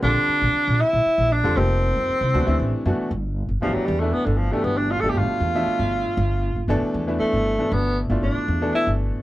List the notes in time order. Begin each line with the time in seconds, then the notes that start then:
0.03 A#1 D3 G3 C4 D4 F4 A4
0.29 muted upright bass stroke
0.41 A#1
0.54 muted upright bass stroke
0.68 A#1
0.81 E4
0.93 A#1
1.06 muted upright bass stroke
1.18 A#1
1.33 D4
1.44 F2 D3 G3 C4 F4 A4
1.56 F1 C3 F3 A#3 C4 D#4 G4
1.96 F2
2.09 muted upright bass stroke
2.21 C2
2.34 D2 B2 E3 A3 D4 F#4
2.46 D2 C3 E3 A3 D4 E4
2.59 A1
2.85 F#2 B2 E3 A3 D4 F#4
2.98 muted upright bass stroke
3.11 G1
3.49 G1
3.62 G1 B2 E3 F3 A3 D4 G4
3.74 F#3, muted upright bass stroke
3.86 E2 G3
4.00 B2 E3 A3 D4 E4
4.13 B3, muted upright bass stroke
4.26 G1 D3
4.37 F3
4.51 B2 E3 A3 D4 G4
4.64 G1 B3
4.77 D4
4.91 F4
5.00 G1 B2 F3 A3 D4 G4 A4
5.09 G4
5.15 G1 F4
5.28 muted upright bass stroke
5.40 E2
5.54 B2 F3 A3 D4 E5
5.66 muted upright bass stroke
5.79 G1
6.17 G1
6.56 G1
6.68 G1 B2 E3 A3 D4 A4
6.81 muted upright bass stroke
6.94 E2
7.07 B2 E3 A3 D4 E4
7.20 A3, muted upright bass stroke
7.33 G1
7.58 B2 E3 A3 D4 E4
7.72 G1 B3
8.10 G1 B2 A3 D4 E4 F4
8.23 G1 D4
8.36 muted upright bass stroke
8.48 E2
8.61 B2 E3 A3 D4 A4
8.74 E4, muted upright bass stroke
8.87 G1